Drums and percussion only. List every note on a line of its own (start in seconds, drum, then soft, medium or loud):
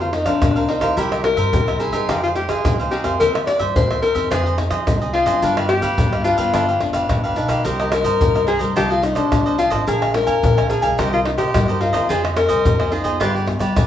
0.01 pandeiro soft
0.01 shaker soft
0.13 pandeiro medium
0.13 tamborim medium
0.26 pandeiro medium
0.26 tamborim medium
0.26 shaker medium
0.26 surdo soft
0.42 pandeiro medium
0.42 tamborim medium
0.42 shaker medium
0.42 surdo loud
0.57 pandeiro soft
0.57 shaker soft
0.69 pandeiro medium
0.81 pandeiro medium
0.81 tamborim medium
0.81 shaker medium
0.81 surdo soft
0.97 pandeiro medium
0.97 shaker medium
0.97 surdo medium
1.12 pandeiro soft
1.12 tamborim medium
1.12 shaker soft
1.24 pandeiro medium
1.24 tamborim medium
1.37 pandeiro medium
1.37 shaker medium
1.37 surdo soft
1.53 pandeiro medium
1.53 shaker medium
1.53 surdo loud
1.68 pandeiro soft
1.68 tamborim medium
1.68 shaker soft
1.80 pandeiro medium
1.80 shaker medium
1.93 pandeiro medium
1.93 shaker medium
1.93 surdo soft
2.09 pandeiro medium
2.09 tamborim medium
2.09 shaker medium
2.09 surdo medium
2.24 pandeiro soft
2.24 shaker soft
2.36 pandeiro medium
2.36 tamborim medium
2.36 shaker medium
2.49 pandeiro medium
2.49 tamborim medium
2.49 shaker medium
2.49 surdo soft
2.65 pandeiro medium
2.65 tamborim medium
2.65 shaker medium
2.65 surdo loud
2.80 pandeiro soft
2.80 shaker soft
2.91 pandeiro medium
3.04 pandeiro medium
3.04 tamborim medium
3.04 shaker medium
3.04 surdo soft
3.20 pandeiro medium
3.20 shaker medium
3.20 surdo medium
3.35 pandeiro soft
3.35 tamborim medium
3.35 shaker soft
3.47 pandeiro medium
3.47 tamborim medium
3.47 shaker medium
3.60 pandeiro medium
3.60 shaker medium
3.60 surdo soft
3.76 pandeiro medium
3.76 shaker medium
3.76 surdo loud
3.91 pandeiro soft
3.91 tamborim medium
3.91 shaker soft
4.03 pandeiro medium
4.15 pandeiro medium
4.15 shaker medium
4.15 surdo soft
4.32 pandeiro medium
4.32 tamborim medium
4.32 shaker medium
4.32 surdo medium
4.46 pandeiro soft
4.46 shaker soft
4.58 pandeiro medium
4.58 tamborim medium
4.58 surdo soft
4.71 pandeiro medium
4.71 tamborim medium
4.71 shaker medium
4.71 surdo soft
4.87 pandeiro medium
4.87 tamborim medium
4.87 shaker medium
4.87 surdo loud
5.02 pandeiro soft
5.02 shaker soft
5.14 pandeiro medium
5.26 pandeiro medium
5.26 tamborim medium
5.26 shaker medium
5.26 surdo soft
5.42 pandeiro medium
5.42 shaker medium
5.42 surdo medium
5.57 pandeiro soft
5.57 tamborim medium
5.57 shaker soft
5.69 pandeiro medium
5.69 tamborim medium
5.82 pandeiro medium
5.82 shaker medium
5.82 surdo soft
5.98 pandeiro medium
5.98 shaker medium
5.98 surdo loud
6.13 pandeiro soft
6.13 tamborim medium
6.13 shaker soft
6.25 pandeiro medium
6.25 shaker medium
6.38 pandeiro medium
6.38 shaker medium
6.38 surdo soft
6.54 pandeiro loud
6.54 tamborim medium
6.54 shaker medium
6.54 surdo medium
6.68 pandeiro soft
6.68 shaker soft
6.81 pandeiro medium
6.81 tamborim medium
6.81 surdo soft
6.93 pandeiro medium
6.93 tamborim medium
6.93 shaker medium
6.93 surdo soft
7.09 pandeiro medium
7.09 tamborim medium
7.09 shaker medium
7.09 surdo medium
7.24 pandeiro soft
7.24 shaker soft
7.36 pandeiro medium
7.36 shaker medium
7.49 pandeiro medium
7.49 tamborim medium
7.49 shaker medium
7.49 surdo soft
7.65 pandeiro medium
7.65 shaker medium
7.65 surdo medium
7.80 pandeiro soft
7.80 tamborim medium
7.80 shaker soft
7.92 pandeiro medium
7.92 tamborim loud
7.92 shaker medium
8.05 pandeiro medium
8.05 shaker medium
8.05 surdo soft
8.21 pandeiro medium
8.21 shaker medium
8.21 surdo loud
8.36 pandeiro soft
8.36 tamborim medium
8.36 shaker soft
8.48 pandeiro medium
8.48 shaker medium
8.61 pandeiro medium
8.61 shaker medium
8.61 surdo soft
8.77 pandeiro medium
8.77 tamborim medium
8.77 shaker medium
8.77 surdo medium
8.91 pandeiro soft
8.91 shaker soft
9.03 pandeiro medium
9.03 tamborim medium
9.03 shaker medium
9.16 pandeiro medium
9.16 tamborim medium
9.16 shaker medium
9.16 surdo soft
9.32 pandeiro medium
9.32 tamborim medium
9.32 shaker medium
9.32 surdo loud
9.47 pandeiro soft
9.47 shaker soft
9.59 pandeiro medium
9.59 shaker medium
9.72 pandeiro medium
9.72 tamborim medium
9.72 shaker medium
9.72 surdo soft
9.88 pandeiro medium
9.88 shaker medium
9.88 surdo medium
10.02 pandeiro soft
10.02 tamborim medium
10.02 shaker soft
10.14 pandeiro medium
10.14 tamborim medium
10.27 pandeiro medium
10.27 shaker medium
10.27 surdo soft
10.43 pandeiro medium
10.43 shaker medium
10.43 surdo loud
10.58 pandeiro soft
10.58 tamborim medium
10.58 shaker soft
10.70 pandeiro medium
10.70 shaker medium
10.83 pandeiro medium
10.83 shaker medium
10.83 surdo soft
10.99 pandeiro medium
10.99 tamborim medium
10.99 shaker medium
10.99 surdo medium
11.13 pandeiro soft
11.13 shaker soft
11.25 pandeiro medium
11.25 tamborim medium
11.38 pandeiro medium
11.38 tamborim medium
11.38 shaker medium
11.38 surdo soft
11.54 pandeiro medium
11.54 tamborim medium
11.54 shaker medium
11.54 surdo loud
11.69 pandeiro soft
11.69 shaker soft
11.81 pandeiro medium
11.94 pandeiro medium
11.94 tamborim medium
11.94 shaker medium
11.94 surdo soft
12.10 pandeiro medium
12.10 shaker medium
12.10 surdo medium
12.25 pandeiro soft
12.25 tamborim medium
12.25 shaker soft
12.37 pandeiro medium
12.37 tamborim loud
12.37 shaker medium
12.49 pandeiro medium
12.49 shaker medium
12.49 surdo soft
12.65 pandeiro medium
12.65 shaker medium
12.65 surdo loud
12.80 pandeiro soft
12.80 tamborim medium
12.80 shaker soft
12.92 pandeiro medium
13.05 pandeiro medium
13.05 shaker medium
13.05 surdo soft
13.21 pandeiro medium
13.21 tamborim medium
13.21 shaker medium
13.21 surdo medium
13.36 pandeiro soft
13.36 shaker soft
13.48 pandeiro medium
13.48 tamborim medium
13.48 surdo soft
13.60 pandeiro medium
13.60 tamborim medium
13.60 shaker medium
13.60 surdo soft
13.76 pandeiro medium
13.76 tamborim medium
13.76 shaker medium
13.76 surdo loud